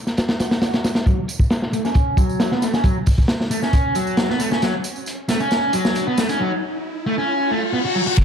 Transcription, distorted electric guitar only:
1.07 F#3
1.73 A3
1.84 C#4
2.18 F#3
2.52 B3
2.62 A3
2.74 C#4
2.84 F#3
3.51 A3
3.62 C#4
3.95 F#3
4.29 B3
4.40 A3
4.51 C#4
4.62 F#3
5.29 A3
5.40 C#4
5.73 F#3
6.07 B3
6.18 A3
6.29 C#4
6.40 F#3
7.07 A3
7.18 C#4
7.51 A3
7.73 B3
7.85 F#4
7.95 F#3
8.07 F#4
8.18 F#3

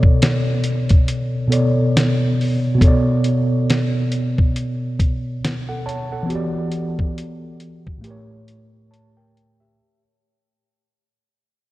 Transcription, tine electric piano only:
Already playing: B2 B3 A4 C#5 D5
1.47 B2 B3 A4
1.52 C#5 D5
2.75 B2 B3
2.81 A4 C#5
2.87 D5
5.69 A4 F#5
5.86 C#5 A5
6.12 A4 F#5
6.23 E3 B3
6.29 F#4 G4
6.35 D5
7.98 A2 A3
8.04 G4 A#4
8.10 C#5
8.91 C#5 A5
9.17 A#4 G5
9.60 G4 E5

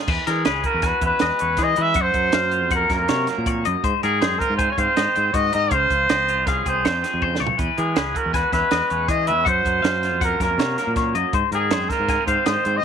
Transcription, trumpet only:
0.27 G#4
0.65 A#4
0.86 B4
1.06 B4
1.63 D#5
1.82 E5
2.01 C5
2.75 A#4
2.94 A#4
4.03 G#4
4.39 A#4
4.57 C5
4.71 C#5
4.79 C5
5.34 D#5
5.55 D#5
5.73 C5
6.48 G#4
6.68 C5
7.78 G#4
8.17 A#4
8.34 B4
8.53 B4
9.10 D#5
9.27 E5
9.48 C5
10.24 A#4
10.42 A#4
11.55 G#4
11.91 A#4
12.26 C5
12.47 C5
12.77 D#5

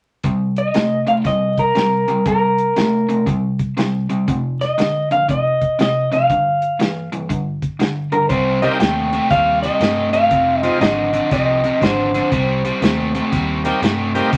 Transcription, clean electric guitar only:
0.58 D#5
1.08 F5
1.27 D#5
1.59 A#4
2.27 A#4
4.61 D#5
5.12 F5
5.30 D#5
5.82 D#5
6.13 F5
8.12 A#4
8.29 C5
8.62 D#5
8.80 G5
9.31 F5
9.62 D#5
10.13 F5
10.60 D#5
10.82 D#5
11.33 D#5
11.83 C5

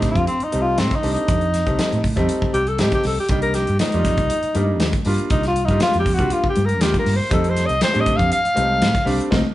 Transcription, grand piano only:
Already playing: G3 A3 C4 D4
0.52 G3 A3 C4 D#4
1.02 G3 A3 C4 D4
1.66 G3 A3 C4 D#4
2.16 G3 A3 C4 D#4
2.79 G3 A3 C4 D#4
3.29 G3 A#3 D4 D#4
3.92 G3 A#3 F4 D5
4.54 G3 A#3 D4 D#4
5.05 G3 A#3 D4 F4
5.69 G3 A#3 D4 F4
6.18 G3 A#3 D4 F4
6.80 G3 A#3 D4 F4
7.30 G3 A3 C4 D#4
7.93 G3 A3 C4 D4
8.54 G3 A3 C4 D#4
9.05 G3 A3 C4 D4
9.31 A#3 C4 D#4

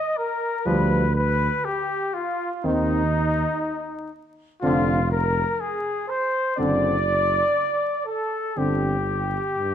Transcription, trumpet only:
Already playing: D#5
0.17 A#4
0.67 B4
1.15 B4
1.65 G4
2.14 F4
2.65 D#4
4.62 F4
5.11 A#4
5.61 G#4
6.10 C5
6.59 D5
8.09 A4
8.58 G4

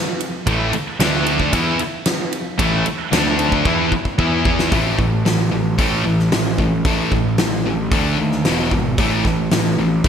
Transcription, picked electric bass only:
0.47 A1
0.74 muted picked electric bass stroke
0.99 D2
1.53 E2
2.59 A1
2.86 muted picked electric bass stroke
3.12 D2
3.65 E2
4.19 E2
4.72 A1
4.99 A1
5.25 A1
5.52 A1
5.79 A1
6.06 A1
6.32 A1
6.59 A1
6.85 A1
7.12 A1
7.39 A1
7.66 A1
7.92 D2
8.18 D#2
8.45 E1
8.72 G#1
8.98 A1
9.25 A1
9.51 A1
9.78 A1
10.04 A1

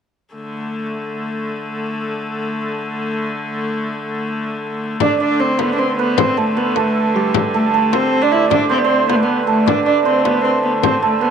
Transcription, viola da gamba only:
5.01 D4
5.21 D4
5.40 C4
5.60 B3
5.75 D4
5.79 C4
5.98 B3
6.17 C4
6.38 A3
6.57 B3
6.76 A3
7.15 G3
7.54 A3
7.72 A3
7.94 C4
8.22 D4
8.32 E4
8.51 D4
8.70 C4
8.78 B3
8.84 C4
9.09 B3
9.16 A3
9.23 B3
9.47 A3
9.68 D4
9.86 D4
10.06 C4
10.21 B3 C4
10.44 C4
10.64 B3
10.84 C4
11.03 A3
11.22 B3

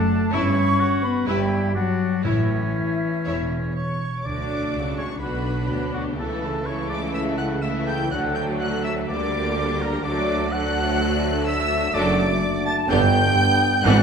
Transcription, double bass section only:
0.33 G1
1.27 G1
2.25 A1
3.26 E1
4.25 D2
4.74 C#2
5.22 B1
5.70 D2
6.19 C#2
8.12 D2
9.10 D2
10.05 D2
11.95 F#1
12.90 G1
13.84 G#1

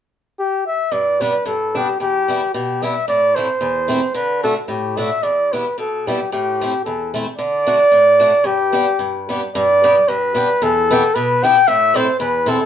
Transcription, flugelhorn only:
0.39 G4
0.67 E5
0.92 D5
1.21 B4
1.47 A4
1.78 G4
2.01 G4
2.54 G4
2.83 E5
3.08 D5
3.35 C5
4.15 B4
4.43 A4
4.69 G4
4.98 E5
5.23 D5
5.52 B4
5.79 A4
6.07 G4
6.32 G4
6.85 A4
7.37 D5
8.46 G4
9.54 D5
10.09 B4
10.63 A4
11.15 B4
11.44 G5
11.68 E5
11.96 C5
12.20 B4
12.49 A4

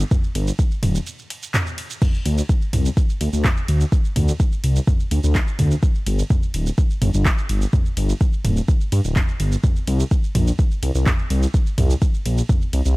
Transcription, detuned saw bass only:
0.35 G1
0.83 D1
2.25 D2
2.73 C2
3.21 D2
3.33 D2
3.68 D2
4.16 D2
4.64 C2
5.11 D2
5.24 D2
5.59 D2
6.07 G1
6.54 D1
7.02 G1
7.14 G1
7.49 G1
7.97 G1
8.45 D1
8.92 G2
9.05 D1
9.40 G1
9.87 C2
10.35 A#1
10.83 C2
10.95 C2
11.30 C2
11.78 C2
12.26 A#1
12.73 C2
12.85 C2

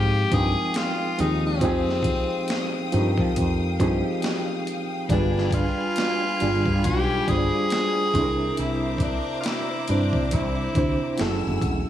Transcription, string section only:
Already playing: G#3 F5 G5 D#6
5.09 G#5 B5
8.14 C5 E5 A#5 D6
11.18 A3 F#5 G#5 E6

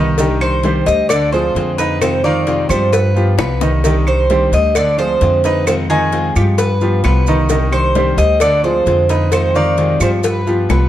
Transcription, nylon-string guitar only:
Already playing: G3 B3 F4
0.19 C3 D#3 G3 D4 G4
0.41 G3 D4 G4
0.62 C3 D#3 G3 D4 G4
0.87 G3 D4 G4
1.10 muted nylon-string guitar stroke
1.33 G#3 C4 F4
1.55 D3 G#3 C4 F4
2.01 C3 D#3 G#3 C4 F4
2.24 G#3 C4 F4
2.47 C3 D#3 G#3 C4 F4
2.70 G#3 C4 F4
2.92 muted nylon-string guitar stroke
3.14 B3 F4
3.38 G3 B3 F4
3.84 C3 D#3 G3 D4 G4
4.08 G3 D4 G4
4.30 C3 D#3 G3 D4 G4
4.53 G3 D4 G4
4.76 muted nylon-string guitar stroke
4.98 G#3 C4 F4
5.21 D3 G#3 C4 F4
5.67 C3 D#3 G#3 C4 F4
5.90 G#3 C4 F4
6.12 C3 D#3 G#3 C4 F4
6.36 G#3 C4 F4
6.58 muted nylon-string guitar stroke
6.81 B3 F4
7.04 G3 B3 F4
7.49 C3 D#3 G3 D4 G4
7.72 G3 D4 G4
7.95 C3 D#3 G3 D4 G4
8.18 G3 D4 G4
8.40 muted nylon-string guitar stroke
8.63 G#3 C4 F4
8.87 D3 G#3 C4 F4
9.31 C3 D#3 G#3 C4 F4
9.54 G#3 C4 F4
9.77 C3 D#3 G#3 C4 F4
10.00 G#3 C4 F4
10.24 muted nylon-string guitar stroke
10.47 B3 F4
10.70 G3 B3 F4

